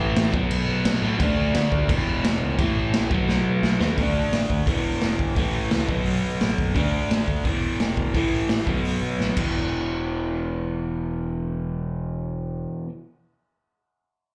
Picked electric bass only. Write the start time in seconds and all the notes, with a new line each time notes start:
0.00 A1
0.17 A1
0.34 B1
0.52 B1
0.68 B1
0.85 B1
1.02 A2
1.20 D2
1.37 D2
1.55 D3
1.72 D2
1.89 E1
2.08 E1
2.24 E1
2.41 C#2
2.59 A1
2.76 A1
2.93 A#1
3.11 B1
3.28 B1
3.46 B1
3.63 B1
3.80 D#2
3.98 D2
4.32 A1
4.50 D2
4.67 E1
5.02 E1
5.37 A1
5.54 A1
5.72 C#2
5.89 B1
6.07 B1
6.25 B1
6.42 A1
6.59 F#1
6.76 D2
7.10 A1
7.28 D2
7.45 E1
7.79 E1
8.14 A1
8.32 A1
8.50 A1
8.67 B1
8.84 B1
9.01 B1
9.19 A1
9.37 E1